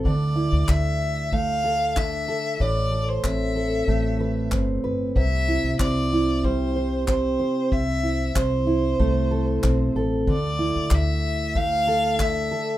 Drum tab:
CP |--x---x-|--x---x-|--x---x-|--x---x-|
BD |o-o-o-o-|o-o-o-o-|o-o-o-o-|o-o-o-o-|

CP |--x---x-|
BD |o-o-o-o-|